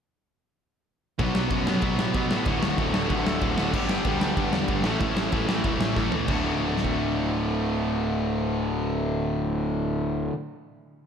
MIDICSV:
0, 0, Header, 1, 5, 480
1, 0, Start_track
1, 0, Key_signature, 2, "major"
1, 0, Tempo, 317628
1, 1806, Time_signature, 4, 2, 24, 8
1, 16721, End_track
2, 0, Start_track
2, 0, Title_t, "Overdriven electric guitar"
2, 0, Program_c, 0, 29
2, 1804, Note_on_c, 0, 47, 90
2, 1813, Note_on_c, 0, 54, 87
2, 1816, Note_on_c, 0, 59, 100
2, 1829, Note_on_c, 0, 62, 92
2, 1842, Note_on_c, 0, 66, 105
2, 1843, Note_on_c, 0, 71, 98
2, 3467, Note_off_c, 0, 47, 0
2, 3471, Note_off_c, 0, 54, 0
2, 3473, Note_off_c, 0, 59, 0
2, 3476, Note_off_c, 0, 71, 0
2, 3486, Note_off_c, 0, 66, 0
2, 3494, Note_on_c, 0, 71, 86
2, 3504, Note_on_c, 0, 66, 84
2, 3510, Note_off_c, 0, 62, 0
2, 3516, Note_on_c, 0, 62, 83
2, 3526, Note_on_c, 0, 59, 81
2, 3535, Note_on_c, 0, 54, 81
2, 3542, Note_on_c, 0, 47, 67
2, 3710, Note_off_c, 0, 47, 0
2, 3714, Note_off_c, 0, 71, 0
2, 3716, Note_on_c, 0, 38, 88
2, 3719, Note_off_c, 0, 66, 0
2, 3726, Note_off_c, 0, 54, 0
2, 3730, Note_off_c, 0, 59, 0
2, 3732, Note_on_c, 0, 45, 90
2, 3744, Note_on_c, 0, 50, 92
2, 3749, Note_off_c, 0, 62, 0
2, 3755, Note_on_c, 0, 57, 98
2, 3767, Note_on_c, 0, 66, 101
2, 5368, Note_off_c, 0, 66, 0
2, 5386, Note_on_c, 0, 66, 83
2, 5388, Note_off_c, 0, 57, 0
2, 5389, Note_off_c, 0, 38, 0
2, 5397, Note_off_c, 0, 45, 0
2, 5399, Note_off_c, 0, 50, 0
2, 5406, Note_on_c, 0, 57, 83
2, 5418, Note_on_c, 0, 50, 81
2, 5433, Note_on_c, 0, 45, 76
2, 5440, Note_on_c, 0, 38, 69
2, 5623, Note_off_c, 0, 66, 0
2, 5625, Note_off_c, 0, 50, 0
2, 5628, Note_off_c, 0, 38, 0
2, 5633, Note_off_c, 0, 57, 0
2, 5634, Note_on_c, 0, 43, 98
2, 5637, Note_off_c, 0, 45, 0
2, 5643, Note_on_c, 0, 50, 90
2, 5654, Note_on_c, 0, 55, 97
2, 5669, Note_on_c, 0, 62, 92
2, 5670, Note_on_c, 0, 59, 96
2, 5687, Note_on_c, 0, 67, 97
2, 7307, Note_off_c, 0, 43, 0
2, 7313, Note_on_c, 0, 45, 94
2, 7318, Note_off_c, 0, 50, 0
2, 7324, Note_off_c, 0, 55, 0
2, 7324, Note_on_c, 0, 52, 97
2, 7329, Note_off_c, 0, 59, 0
2, 7330, Note_on_c, 0, 57, 98
2, 7334, Note_off_c, 0, 62, 0
2, 7336, Note_on_c, 0, 61, 92
2, 7340, Note_off_c, 0, 67, 0
2, 7345, Note_on_c, 0, 64, 101
2, 7346, Note_on_c, 0, 69, 95
2, 8988, Note_off_c, 0, 45, 0
2, 9006, Note_on_c, 0, 45, 71
2, 9007, Note_off_c, 0, 52, 0
2, 9010, Note_off_c, 0, 57, 0
2, 9013, Note_off_c, 0, 61, 0
2, 9018, Note_off_c, 0, 64, 0
2, 9018, Note_off_c, 0, 69, 0
2, 9026, Note_on_c, 0, 52, 79
2, 9037, Note_on_c, 0, 57, 77
2, 9037, Note_on_c, 0, 61, 86
2, 9050, Note_on_c, 0, 64, 80
2, 9065, Note_on_c, 0, 69, 87
2, 9244, Note_off_c, 0, 45, 0
2, 9254, Note_off_c, 0, 52, 0
2, 9259, Note_off_c, 0, 61, 0
2, 9260, Note_off_c, 0, 57, 0
2, 9266, Note_off_c, 0, 64, 0
2, 9273, Note_off_c, 0, 69, 0
2, 9496, Note_on_c, 0, 38, 105
2, 9509, Note_on_c, 0, 45, 91
2, 9524, Note_on_c, 0, 50, 99
2, 9541, Note_on_c, 0, 57, 102
2, 9547, Note_on_c, 0, 66, 106
2, 15610, Note_off_c, 0, 38, 0
2, 15616, Note_off_c, 0, 45, 0
2, 15624, Note_off_c, 0, 50, 0
2, 15632, Note_off_c, 0, 57, 0
2, 15635, Note_off_c, 0, 66, 0
2, 16721, End_track
3, 0, Start_track
3, 0, Title_t, "Overdriven electric guitar"
3, 0, Program_c, 1, 29
3, 1804, Note_on_c, 1, 47, 99
3, 1814, Note_on_c, 1, 54, 98
3, 1829, Note_on_c, 1, 59, 98
3, 2256, Note_off_c, 1, 47, 0
3, 2259, Note_off_c, 1, 59, 0
3, 2273, Note_off_c, 1, 54, 0
3, 2274, Note_on_c, 1, 47, 86
3, 2278, Note_on_c, 1, 59, 92
3, 2279, Note_on_c, 1, 54, 91
3, 2518, Note_off_c, 1, 59, 0
3, 2525, Note_off_c, 1, 54, 0
3, 2527, Note_off_c, 1, 47, 0
3, 2531, Note_on_c, 1, 54, 82
3, 2536, Note_on_c, 1, 59, 88
3, 2545, Note_on_c, 1, 47, 79
3, 2736, Note_off_c, 1, 47, 0
3, 2748, Note_off_c, 1, 54, 0
3, 2754, Note_on_c, 1, 47, 91
3, 2760, Note_off_c, 1, 59, 0
3, 2766, Note_on_c, 1, 54, 99
3, 2778, Note_on_c, 1, 59, 97
3, 3209, Note_off_c, 1, 47, 0
3, 3212, Note_off_c, 1, 54, 0
3, 3221, Note_off_c, 1, 59, 0
3, 3227, Note_on_c, 1, 47, 88
3, 3230, Note_on_c, 1, 54, 83
3, 3240, Note_on_c, 1, 59, 96
3, 3435, Note_off_c, 1, 59, 0
3, 3448, Note_off_c, 1, 47, 0
3, 3453, Note_on_c, 1, 59, 88
3, 3455, Note_off_c, 1, 54, 0
3, 3466, Note_on_c, 1, 47, 64
3, 3473, Note_on_c, 1, 54, 70
3, 3693, Note_off_c, 1, 59, 0
3, 3700, Note_off_c, 1, 47, 0
3, 3703, Note_off_c, 1, 54, 0
3, 3719, Note_on_c, 1, 38, 94
3, 3733, Note_on_c, 1, 45, 100
3, 3738, Note_on_c, 1, 50, 104
3, 4180, Note_off_c, 1, 38, 0
3, 4183, Note_off_c, 1, 45, 0
3, 4187, Note_off_c, 1, 50, 0
3, 4198, Note_on_c, 1, 38, 85
3, 4201, Note_on_c, 1, 45, 86
3, 4205, Note_on_c, 1, 50, 86
3, 4422, Note_off_c, 1, 50, 0
3, 4428, Note_off_c, 1, 38, 0
3, 4430, Note_off_c, 1, 45, 0
3, 4441, Note_on_c, 1, 50, 86
3, 4446, Note_on_c, 1, 38, 74
3, 4448, Note_on_c, 1, 45, 79
3, 4678, Note_off_c, 1, 38, 0
3, 4681, Note_off_c, 1, 45, 0
3, 4684, Note_off_c, 1, 50, 0
3, 4696, Note_on_c, 1, 38, 87
3, 4700, Note_on_c, 1, 45, 93
3, 4702, Note_on_c, 1, 50, 105
3, 5132, Note_off_c, 1, 38, 0
3, 5148, Note_off_c, 1, 45, 0
3, 5150, Note_on_c, 1, 38, 81
3, 5151, Note_off_c, 1, 50, 0
3, 5166, Note_on_c, 1, 45, 92
3, 5169, Note_on_c, 1, 50, 101
3, 5375, Note_off_c, 1, 50, 0
3, 5379, Note_off_c, 1, 45, 0
3, 5388, Note_off_c, 1, 38, 0
3, 5393, Note_on_c, 1, 50, 89
3, 5397, Note_on_c, 1, 45, 79
3, 5406, Note_on_c, 1, 38, 71
3, 5626, Note_off_c, 1, 50, 0
3, 5628, Note_off_c, 1, 45, 0
3, 5633, Note_off_c, 1, 38, 0
3, 5639, Note_on_c, 1, 43, 95
3, 5646, Note_on_c, 1, 50, 107
3, 5651, Note_on_c, 1, 55, 110
3, 6108, Note_off_c, 1, 43, 0
3, 6110, Note_off_c, 1, 50, 0
3, 6126, Note_on_c, 1, 43, 91
3, 6128, Note_on_c, 1, 50, 84
3, 6130, Note_off_c, 1, 55, 0
3, 6148, Note_on_c, 1, 55, 96
3, 6349, Note_off_c, 1, 55, 0
3, 6366, Note_off_c, 1, 50, 0
3, 6367, Note_off_c, 1, 43, 0
3, 6367, Note_on_c, 1, 55, 91
3, 6384, Note_on_c, 1, 50, 76
3, 6385, Note_on_c, 1, 43, 78
3, 6577, Note_off_c, 1, 43, 0
3, 6583, Note_off_c, 1, 50, 0
3, 6592, Note_off_c, 1, 55, 0
3, 6595, Note_on_c, 1, 43, 88
3, 6601, Note_on_c, 1, 50, 106
3, 6610, Note_on_c, 1, 55, 100
3, 7078, Note_off_c, 1, 43, 0
3, 7086, Note_off_c, 1, 50, 0
3, 7096, Note_off_c, 1, 55, 0
3, 7096, Note_on_c, 1, 43, 80
3, 7104, Note_on_c, 1, 50, 97
3, 7114, Note_on_c, 1, 55, 94
3, 7323, Note_off_c, 1, 43, 0
3, 7327, Note_off_c, 1, 50, 0
3, 7332, Note_off_c, 1, 55, 0
3, 7333, Note_on_c, 1, 45, 88
3, 7342, Note_on_c, 1, 52, 88
3, 7355, Note_on_c, 1, 57, 97
3, 7561, Note_off_c, 1, 57, 0
3, 7563, Note_off_c, 1, 52, 0
3, 7579, Note_off_c, 1, 45, 0
3, 7579, Note_on_c, 1, 57, 109
3, 7581, Note_on_c, 1, 52, 102
3, 7597, Note_on_c, 1, 45, 86
3, 8028, Note_off_c, 1, 52, 0
3, 8028, Note_off_c, 1, 57, 0
3, 8046, Note_on_c, 1, 52, 89
3, 8046, Note_on_c, 1, 57, 88
3, 8050, Note_off_c, 1, 45, 0
3, 8068, Note_on_c, 1, 45, 78
3, 8262, Note_off_c, 1, 45, 0
3, 8264, Note_off_c, 1, 52, 0
3, 8276, Note_off_c, 1, 57, 0
3, 8281, Note_on_c, 1, 45, 80
3, 8282, Note_on_c, 1, 52, 87
3, 8294, Note_on_c, 1, 57, 86
3, 8517, Note_off_c, 1, 57, 0
3, 8524, Note_off_c, 1, 52, 0
3, 8527, Note_off_c, 1, 45, 0
3, 8535, Note_on_c, 1, 57, 100
3, 8542, Note_on_c, 1, 52, 89
3, 8545, Note_on_c, 1, 45, 78
3, 9007, Note_off_c, 1, 52, 0
3, 9010, Note_off_c, 1, 57, 0
3, 9017, Note_off_c, 1, 45, 0
3, 9025, Note_on_c, 1, 52, 86
3, 9028, Note_on_c, 1, 57, 98
3, 9035, Note_on_c, 1, 45, 83
3, 9241, Note_off_c, 1, 45, 0
3, 9252, Note_off_c, 1, 52, 0
3, 9255, Note_off_c, 1, 57, 0
3, 9259, Note_on_c, 1, 45, 71
3, 9270, Note_on_c, 1, 52, 75
3, 9273, Note_on_c, 1, 57, 80
3, 9470, Note_off_c, 1, 45, 0
3, 9476, Note_on_c, 1, 38, 102
3, 9497, Note_off_c, 1, 52, 0
3, 9498, Note_off_c, 1, 57, 0
3, 9514, Note_on_c, 1, 45, 99
3, 9542, Note_on_c, 1, 50, 100
3, 15600, Note_off_c, 1, 38, 0
3, 15619, Note_off_c, 1, 45, 0
3, 15633, Note_off_c, 1, 50, 0
3, 16721, End_track
4, 0, Start_track
4, 0, Title_t, "Picked electric bass"
4, 0, Program_c, 2, 34
4, 1807, Note_on_c, 2, 35, 88
4, 2204, Note_off_c, 2, 35, 0
4, 2271, Note_on_c, 2, 42, 90
4, 2675, Note_off_c, 2, 42, 0
4, 2765, Note_on_c, 2, 47, 93
4, 2963, Note_off_c, 2, 47, 0
4, 3015, Note_on_c, 2, 45, 79
4, 3209, Note_off_c, 2, 45, 0
4, 3249, Note_on_c, 2, 47, 89
4, 3446, Note_off_c, 2, 47, 0
4, 3496, Note_on_c, 2, 45, 81
4, 3690, Note_off_c, 2, 45, 0
4, 3720, Note_on_c, 2, 26, 90
4, 3921, Note_off_c, 2, 26, 0
4, 3954, Note_on_c, 2, 26, 86
4, 4157, Note_off_c, 2, 26, 0
4, 4210, Note_on_c, 2, 26, 87
4, 4407, Note_off_c, 2, 26, 0
4, 4458, Note_on_c, 2, 26, 79
4, 4652, Note_off_c, 2, 26, 0
4, 4690, Note_on_c, 2, 33, 95
4, 4887, Note_off_c, 2, 33, 0
4, 4922, Note_on_c, 2, 26, 84
4, 5123, Note_off_c, 2, 26, 0
4, 5167, Note_on_c, 2, 26, 86
4, 5367, Note_off_c, 2, 26, 0
4, 5406, Note_on_c, 2, 26, 82
4, 5607, Note_off_c, 2, 26, 0
4, 5641, Note_on_c, 2, 31, 90
4, 6045, Note_off_c, 2, 31, 0
4, 6125, Note_on_c, 2, 38, 93
4, 6529, Note_off_c, 2, 38, 0
4, 6604, Note_on_c, 2, 43, 94
4, 6809, Note_off_c, 2, 43, 0
4, 6847, Note_on_c, 2, 40, 83
4, 7051, Note_off_c, 2, 40, 0
4, 7085, Note_on_c, 2, 43, 85
4, 7291, Note_off_c, 2, 43, 0
4, 7297, Note_on_c, 2, 33, 88
4, 7515, Note_off_c, 2, 33, 0
4, 7568, Note_on_c, 2, 33, 96
4, 7774, Note_off_c, 2, 33, 0
4, 7780, Note_on_c, 2, 33, 82
4, 7998, Note_off_c, 2, 33, 0
4, 8055, Note_on_c, 2, 33, 90
4, 8259, Note_off_c, 2, 33, 0
4, 8281, Note_on_c, 2, 33, 79
4, 8492, Note_off_c, 2, 33, 0
4, 8537, Note_on_c, 2, 28, 93
4, 8742, Note_off_c, 2, 28, 0
4, 8766, Note_on_c, 2, 33, 82
4, 8976, Note_off_c, 2, 33, 0
4, 9010, Note_on_c, 2, 33, 83
4, 9219, Note_off_c, 2, 33, 0
4, 9240, Note_on_c, 2, 33, 89
4, 9453, Note_off_c, 2, 33, 0
4, 9500, Note_on_c, 2, 26, 91
4, 15551, Note_off_c, 2, 26, 0
4, 16721, End_track
5, 0, Start_track
5, 0, Title_t, "Drums"
5, 1801, Note_on_c, 9, 51, 77
5, 1802, Note_on_c, 9, 36, 113
5, 1952, Note_off_c, 9, 51, 0
5, 1954, Note_off_c, 9, 36, 0
5, 2039, Note_on_c, 9, 38, 116
5, 2190, Note_off_c, 9, 38, 0
5, 2272, Note_on_c, 9, 51, 74
5, 2278, Note_on_c, 9, 36, 110
5, 2423, Note_off_c, 9, 51, 0
5, 2429, Note_off_c, 9, 36, 0
5, 2523, Note_on_c, 9, 38, 119
5, 2674, Note_off_c, 9, 38, 0
5, 2744, Note_on_c, 9, 51, 79
5, 2756, Note_on_c, 9, 36, 109
5, 2895, Note_off_c, 9, 51, 0
5, 2908, Note_off_c, 9, 36, 0
5, 3005, Note_on_c, 9, 38, 109
5, 3156, Note_off_c, 9, 38, 0
5, 3237, Note_on_c, 9, 51, 71
5, 3243, Note_on_c, 9, 36, 97
5, 3388, Note_off_c, 9, 51, 0
5, 3394, Note_off_c, 9, 36, 0
5, 3487, Note_on_c, 9, 38, 110
5, 3638, Note_off_c, 9, 38, 0
5, 3709, Note_on_c, 9, 51, 76
5, 3721, Note_on_c, 9, 36, 115
5, 3861, Note_off_c, 9, 51, 0
5, 3872, Note_off_c, 9, 36, 0
5, 3968, Note_on_c, 9, 38, 118
5, 4119, Note_off_c, 9, 38, 0
5, 4203, Note_on_c, 9, 36, 109
5, 4206, Note_on_c, 9, 51, 72
5, 4355, Note_off_c, 9, 36, 0
5, 4358, Note_off_c, 9, 51, 0
5, 4443, Note_on_c, 9, 38, 106
5, 4594, Note_off_c, 9, 38, 0
5, 4684, Note_on_c, 9, 51, 70
5, 4687, Note_on_c, 9, 36, 108
5, 4836, Note_off_c, 9, 51, 0
5, 4838, Note_off_c, 9, 36, 0
5, 4935, Note_on_c, 9, 38, 110
5, 5086, Note_off_c, 9, 38, 0
5, 5157, Note_on_c, 9, 51, 65
5, 5165, Note_on_c, 9, 36, 112
5, 5308, Note_off_c, 9, 51, 0
5, 5316, Note_off_c, 9, 36, 0
5, 5405, Note_on_c, 9, 38, 109
5, 5557, Note_off_c, 9, 38, 0
5, 5645, Note_on_c, 9, 36, 109
5, 5647, Note_on_c, 9, 49, 101
5, 5796, Note_off_c, 9, 36, 0
5, 5798, Note_off_c, 9, 49, 0
5, 5884, Note_on_c, 9, 38, 116
5, 6035, Note_off_c, 9, 38, 0
5, 6113, Note_on_c, 9, 51, 75
5, 6122, Note_on_c, 9, 36, 109
5, 6265, Note_off_c, 9, 51, 0
5, 6274, Note_off_c, 9, 36, 0
5, 6368, Note_on_c, 9, 38, 113
5, 6519, Note_off_c, 9, 38, 0
5, 6603, Note_on_c, 9, 51, 72
5, 6605, Note_on_c, 9, 36, 112
5, 6754, Note_off_c, 9, 51, 0
5, 6756, Note_off_c, 9, 36, 0
5, 6842, Note_on_c, 9, 38, 111
5, 6994, Note_off_c, 9, 38, 0
5, 7073, Note_on_c, 9, 51, 73
5, 7081, Note_on_c, 9, 36, 102
5, 7224, Note_off_c, 9, 51, 0
5, 7233, Note_off_c, 9, 36, 0
5, 7313, Note_on_c, 9, 38, 113
5, 7464, Note_off_c, 9, 38, 0
5, 7561, Note_on_c, 9, 51, 83
5, 7567, Note_on_c, 9, 36, 109
5, 7712, Note_off_c, 9, 51, 0
5, 7718, Note_off_c, 9, 36, 0
5, 7809, Note_on_c, 9, 38, 116
5, 7960, Note_off_c, 9, 38, 0
5, 8040, Note_on_c, 9, 51, 75
5, 8050, Note_on_c, 9, 36, 106
5, 8191, Note_off_c, 9, 51, 0
5, 8202, Note_off_c, 9, 36, 0
5, 8292, Note_on_c, 9, 38, 109
5, 8443, Note_off_c, 9, 38, 0
5, 8521, Note_on_c, 9, 51, 73
5, 8530, Note_on_c, 9, 36, 115
5, 8672, Note_off_c, 9, 51, 0
5, 8681, Note_off_c, 9, 36, 0
5, 8774, Note_on_c, 9, 38, 116
5, 8925, Note_off_c, 9, 38, 0
5, 9009, Note_on_c, 9, 38, 60
5, 9014, Note_on_c, 9, 36, 109
5, 9160, Note_off_c, 9, 38, 0
5, 9165, Note_off_c, 9, 36, 0
5, 9248, Note_on_c, 9, 43, 87
5, 9399, Note_off_c, 9, 43, 0
5, 9489, Note_on_c, 9, 49, 86
5, 9498, Note_on_c, 9, 36, 108
5, 9641, Note_off_c, 9, 49, 0
5, 9649, Note_off_c, 9, 36, 0
5, 10235, Note_on_c, 9, 38, 63
5, 10344, Note_on_c, 9, 36, 71
5, 10386, Note_off_c, 9, 38, 0
5, 10495, Note_off_c, 9, 36, 0
5, 16721, End_track
0, 0, End_of_file